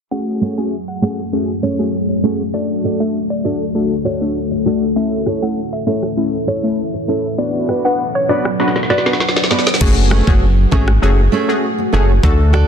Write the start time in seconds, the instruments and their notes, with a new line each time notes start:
0.11 ambient pad F#2 F#3 A3 C#4 G#4, synth stab A3 C#4 F#4 G#4, synth pluck F#5
0.41 nylon-string guitar A3 C#4 G#4
0.58 synth stab A3 C#4 F#4 G#4, synth pluck G#5
0.88 synth pluck F#5
1.02 nylon-string guitar A3 C#4 G#4, synth stab A3 C#4 F#4 G#4, synth pluck F#5
1.32 synth stab A3 C#4 F#4 G#4
1.62 nylon-string guitar A3 C#4 G#4, synth pluck C#5
1.79 synth stab A3 C#4 F#4 G#4
2.09 muted nylon-string guitar stroke
2.23 nylon-string guitar A3 C#4 G#4, synth stab A3 C#4 F#4 G#4
2.54 ambient pad D2 D3 A3 F#4 A4, synth stab A3 D4 F#4 A4, synth pluck D5
2.83 nylon-string guitar F#4 A4 D5
3.00 synth stab A3 D4 F#4 A4, synth pluck E5
3.30 synth pluck D5
3.44 synth stab A3 D4 F#4 A4, nylon-string guitar F#4 A4 D5, synth pluck D5
3.75 synth stab A3 D4 F#4 A4
4.05 nylon-string guitar F#4 A4 D5, synth pluck C#5
4.21 synth stab A3 D4 F#4 A4
4.51 muted nylon-string guitar stroke
4.65 synth stab A3 D4 F#4 A4, nylon-string guitar F#4 A4 D5
4.96 ambient pad A2 E3 C#4 E5, synth stab A3 C#4 E4 A4, synth pluck E5
5.26 nylon-string guitar E4 A4 C#5, cross-stick
5.42 synth stab A3 C#4 E4 A4, synth pluck F#5
5.73 synth pluck E5
5.86 synth stab A3 C#4 E4 A4, nylon-string guitar E4 A4 C#5, synth pluck E5
6.03 cross-stick
6.17 synth stab A3 C#4 E4 A4
6.47 nylon-string guitar E4 A4 C#5, synth pluck C#5
6.63 synth stab A3 C#4 E4 A4
6.94 muted nylon-string guitar stroke
7.08 synth stab A3 C#4 E4 A4, nylon-string guitar E4 A4 C#5
7.38 ambient pad B2 F#3 D4 B4 F#5, synth stab B3 D4 F#4 B4, synth pluck D5
7.68 nylon-string guitar F#4 B4 D5, cross-stick
7.85 synth stab B3 D4 F#4 B4, synth pluck F#5
8.15 synth pluck C#5
8.29 synth stab B3 D4 F#4 B4, nylon-string guitar F#4 B4 D5, synth pluck D5
8.45 cross-stick
8.60 synth stab B3 D4 F#4 B4, snare
8.68 snare
8.76 snare
8.83 snare
8.90 nylon-string guitar F#4 B4 D5, synth pluck D5, snare
8.98 snare
9.06 synth stab B3 D4 F#4 B4, snare
9.13 snare
9.20 snare
9.29 snare
9.37 snare
9.44 snare
9.50 synth stab B3 D4 F#4 B4, nylon-string guitar F#4 B4 D5, snare
9.59 snare
9.67 snare
9.74 snare
9.81 analog synth bass F#1, synth stab A3 C#4 F#4 G#4, ambient pad A3 F#4 G#4, kick, crash
10.11 nylon-string guitar A3 C#4 G#4, cross-stick
10.27 analog synth bass F#1, synth stab A3 C#4 F#4 G#4, kick
10.71 analog synth bass G#1, nylon-string guitar A3 C#4 G#4, synth stab A3 C#4 F#4 G#4, kick
10.88 cross-stick
11.02 analog synth bass F#1, synth stab A3 C#4 F#4 G#4
11.32 nylon-string guitar A3 C#4 G#4
11.48 synth stab A3 C#4 F#4 G#4
11.78 muted nylon-string guitar stroke
11.93 analog synth bass F#1, nylon-string guitar A3 C#4 G#4, synth stab A3 C#4 F#4 G#4
12.23 analog synth bass D2, ambient pad F#3 D4, synth stab A3 D4 F#4 A4, kick
12.53 nylon-string guitar F#4 A4 D5, cross-stick